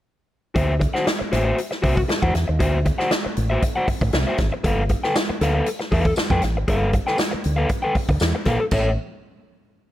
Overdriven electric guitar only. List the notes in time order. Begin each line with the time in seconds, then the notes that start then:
0.55 F#4 C5 E5
0.80 muted overdriven electric guitar stroke
0.94 F#4 C5 F#5
1.06 muted overdriven electric guitar stroke
1.19 muted overdriven electric guitar stroke
1.32 F#4 C5 E5
1.45 F#4 C5 E5
1.71 muted overdriven electric guitar stroke
1.82 F#4 C5 E5
1.96 muted overdriven electric guitar stroke
2.08 muted overdriven electric guitar stroke
2.22 F#4 C5 F#5
2.34 muted overdriven electric guitar stroke
2.48 muted overdriven electric guitar stroke
2.59 F#4 C5 E5
2.85 muted overdriven electric guitar stroke
2.98 F#4 C5 F#5
3.11 muted overdriven electric guitar stroke
3.25 muted overdriven electric guitar stroke
3.50 F#4 C5 E5
3.63 muted overdriven electric guitar stroke
3.76 F#4 C5 F#5
3.87 muted overdriven electric guitar stroke
4.02 muted overdriven electric guitar stroke
4.14 muted overdriven electric guitar stroke
4.27 F#4 C5 E5
4.39 muted overdriven electric guitar stroke
4.52 muted overdriven electric guitar stroke
4.64 A4 B4 F5
4.90 muted overdriven electric guitar stroke
5.04 A4 B4 G5
5.16 muted overdriven electric guitar stroke
5.29 muted overdriven electric guitar stroke
5.41 A4 B4 F5
5.54 A4 B4 F5
5.79 muted overdriven electric guitar stroke
5.92 A4 B4 F5
6.06 muted overdriven electric guitar stroke
6.17 muted overdriven electric guitar stroke
6.31 A4 B4 G5
6.43 muted overdriven electric guitar stroke
6.57 muted overdriven electric guitar stroke
6.68 A4 B4 F5
6.93 muted overdriven electric guitar stroke
7.07 A4 B4 G5
7.18 muted overdriven electric guitar stroke
7.31 muted overdriven electric guitar stroke
7.56 A4 B4 F5
7.69 muted overdriven electric guitar stroke
7.82 A4 B4 G5
7.95 muted overdriven electric guitar stroke
8.09 muted overdriven electric guitar stroke
8.35 muted overdriven electric guitar stroke
8.46 A4 B4 F5
8.60 muted overdriven electric guitar stroke
8.72 A4 C#5 E5